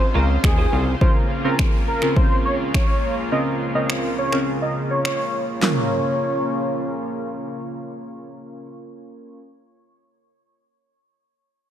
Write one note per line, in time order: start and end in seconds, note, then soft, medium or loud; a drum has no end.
0.00 0.97 C#3 medium
0.00 0.37 C4 medium
0.00 0.37 C#4 medium
0.00 0.37 F4 medium
0.00 0.97 F4 medium
0.00 0.37 G#4 medium
0.00 0.97 C5 medium
0.00 muted clean electric guitar stroke soft
0.00 downlifter medium
0.14 0.38 C#2 medium
0.14 0.36 C#4 medium
0.14 0.29 F4 loud
0.14 0.24 A#4 medium
0.14 0.28 C5 medium
0.29 muted clean electric guitar stroke soft
0.44 0.66 D#2 medium
0.44 0.84 G#4 medium
0.44 finger snap loud
0.44 muted clean electric guitar stroke soft
0.44 kick loud
0.58 0.71 C#4 medium
0.58 0.72 F4 medium
0.58 0.72 C5 medium
0.72 0.95 C2 medium
0.72 0.93 C#4 medium
0.72 0.87 F4 medium
0.72 0.86 C5 medium
0.87 muted clean electric guitar stroke medium
1.01 5.59 C#2 medium
1.01 1.26 C#3 medium
1.01 5.59 C#3 medium
1.01 5.59 A#3 medium
1.01 1.26 C4 medium
1.01 1.26 C#4 medium
1.01 1.26 F4 medium
1.01 5.59 F4 medium
1.01 1.26 A#4 medium
1.01 1.11 C5 medium
1.01 kick loud
1.44 1.77 C#3 medium
1.44 1.77 C4 medium
1.44 1.77 C#4 medium
1.44 1.77 F4 medium
1.44 1.54 A#4 medium
1.44 1.77 A#4 medium
1.59 finger snap loud
1.59 kick loud
1.88 2.07 A#4 medium
2.02 2.68 C#3 medium
2.02 2.68 C4 medium
2.02 2.68 C#4 medium
2.02 2.68 F4 medium
2.02 2.68 A#4 medium
2.02 finger snap medium
2.16 2.36 C5 medium
2.16 kick loud
2.45 2.55 C#5 medium
2.74 3.15 C#5 medium
2.74 finger snap loud
2.74 kick loud
3.32 3.56 C#3 medium
3.32 3.56 C4 medium
3.32 3.57 C#4 medium
3.32 3.57 F4 medium
3.32 3.57 A#4 medium
3.32 3.42 D#5 medium
3.75 4.08 C#3 medium
3.75 4.08 C4 medium
3.75 4.08 C#4 medium
3.75 4.08 F4 medium
3.75 4.08 A#4 medium
3.75 3.85 D#5 medium
3.90 finger snap loud
4.18 4.38 C#5 medium
4.33 4.98 C#3 medium
4.33 4.98 C4 medium
4.33 4.98 C#4 medium
4.33 4.99 F4 medium
4.33 4.99 A#4 medium
4.33 finger snap medium
4.62 4.72 D#5 medium
4.91 5.00 C#5 medium
5.05 5.46 C#5 medium
5.05 finger snap loud
5.60 8.70 C#3 medium
5.60 9.38 A#3 medium
5.60 8.69 A#3 medium
5.60 9.39 C#4 medium
5.60 8.70 F4 medium
5.60 9.40 F4 medium
5.60 7.32 C#5 medium
5.60 snare loud
5.60 clap medium
5.60 floor tom medium
5.64 9.40 A#4 medium